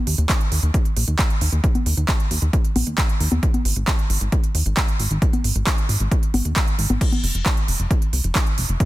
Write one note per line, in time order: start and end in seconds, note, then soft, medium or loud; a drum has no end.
0.07 0.15 D#2 loud
0.07 open hi-hat loud
0.18 0.26 D#2 medium
0.18 closed hi-hat soft
0.29 kick loud
0.29 clap loud
0.29 closed hi-hat medium
0.41 closed hi-hat soft
0.52 0.60 D#2 medium
0.52 open hi-hat loud
0.63 0.71 D#2 medium
0.63 closed hi-hat soft
0.74 kick loud
0.74 closed hi-hat medium
0.85 closed hi-hat soft
0.97 1.05 A#1 loud
0.97 open hi-hat loud
1.08 1.16 D#2 medium
1.08 closed hi-hat soft
1.19 kick loud
1.19 clap loud
1.19 closed hi-hat medium
1.30 closed hi-hat soft
1.41 1.49 D#2 medium
1.41 open hi-hat loud
1.52 1.61 D#2 medium
1.52 closed hi-hat soft
1.64 kick loud
1.64 closed hi-hat medium
1.75 closed hi-hat soft
1.75 high conga medium
1.86 1.94 D#2 loud
1.86 open hi-hat loud
1.97 2.05 D#2 medium
1.97 closed hi-hat soft
2.08 kick loud
2.08 clap loud
2.08 closed hi-hat medium
2.20 closed hi-hat soft
2.31 2.39 D#2 medium
2.31 open hi-hat loud
2.42 2.50 D#2 medium
2.42 closed hi-hat soft
2.53 kick loud
2.53 closed hi-hat medium
2.65 closed hi-hat soft
2.76 2.84 A#1 loud
2.76 open hi-hat loud
2.76 high conga medium
2.87 2.95 D#2 medium
2.87 closed hi-hat soft
2.98 kick loud
2.98 clap loud
2.98 closed hi-hat medium
3.09 closed hi-hat soft
3.20 3.29 D#2 medium
3.20 open hi-hat loud
3.32 3.40 D#2 medium
3.32 closed hi-hat soft
3.32 high conga medium
3.43 kick loud
3.43 closed hi-hat medium
3.54 closed hi-hat soft
3.54 high conga medium
3.65 3.73 G#1 loud
3.65 open hi-hat loud
3.76 3.84 G#1 medium
3.76 closed hi-hat soft
3.88 kick loud
3.88 clap loud
3.88 closed hi-hat medium
3.99 closed hi-hat soft
4.10 4.18 G#1 medium
4.10 open hi-hat loud
4.21 4.29 G#1 medium
4.21 closed hi-hat soft
4.32 kick loud
4.32 closed hi-hat medium
4.44 closed hi-hat soft
4.55 4.63 D#2 loud
4.55 open hi-hat loud
4.66 4.74 G#1 medium
4.66 closed hi-hat soft
4.77 kick loud
4.77 clap loud
4.77 closed hi-hat medium
4.88 closed hi-hat soft
4.99 5.08 G#1 loud
4.99 open hi-hat loud
5.11 5.19 G#1 medium
5.11 closed hi-hat soft
5.22 kick loud
5.22 closed hi-hat medium
5.33 closed hi-hat soft
5.33 high conga medium
5.44 5.52 G#1 loud
5.44 open hi-hat loud
5.55 5.64 G#1 medium
5.55 closed hi-hat soft
5.67 kick loud
5.67 clap loud
5.67 closed hi-hat medium
5.78 closed hi-hat soft
5.89 5.97 G#1 medium
5.89 open hi-hat loud
6.00 6.08 G#1 medium
6.00 closed hi-hat soft
6.11 kick loud
6.11 closed hi-hat medium
6.23 closed hi-hat soft
6.34 6.42 G#1 loud
6.34 open hi-hat loud
6.34 high conga medium
6.45 6.53 D#2 medium
6.45 closed hi-hat soft
6.56 kick loud
6.56 clap loud
6.56 closed hi-hat medium
6.68 closed hi-hat soft
6.79 6.87 G#1 medium
6.79 open hi-hat loud
6.90 6.98 G#1 medium
6.90 closed hi-hat soft
6.90 high conga medium
7.01 kick loud
7.01 closed hi-hat medium
7.01 crash medium
7.12 closed hi-hat soft
7.12 high conga medium
7.23 7.31 F1 loud
7.23 open hi-hat loud
7.35 7.43 F1 medium
7.35 closed hi-hat soft
7.46 kick loud
7.46 clap loud
7.46 closed hi-hat medium
7.57 closed hi-hat soft
7.68 7.76 F1 medium
7.68 open hi-hat loud
7.79 7.87 F1 medium
7.79 closed hi-hat soft
7.91 kick loud
7.91 closed hi-hat medium
8.02 closed hi-hat soft
8.13 8.21 C2 loud
8.13 open hi-hat loud
8.24 8.32 F1 medium
8.24 closed hi-hat soft
8.35 kick loud
8.35 clap loud
8.35 closed hi-hat medium
8.47 closed hi-hat soft
8.58 8.66 F1 medium
8.58 open hi-hat loud
8.69 8.77 F1 medium
8.69 closed hi-hat soft
8.80 kick loud
8.80 closed hi-hat medium